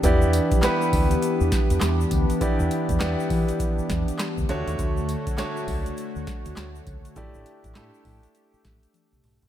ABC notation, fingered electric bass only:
X:1
M:4/4
L:1/16
Q:"Swing 16ths" 1/4=101
K:Edor
V:1 name="Fingered electric bass" clef=bass
E,,3 z3 D,,2 z E,, z E,, E,,2 D,, z | z E,, z E,, E,, z E, z3 E,, z2 D,, D,, ^D,, | D,,3 z3 C,,2 z D,, z D,, D,,2 C,, z | A,,, A,,, z A,,, A,, z A,, z3 A,,, z2 B,,, B,,, ^A,,, |]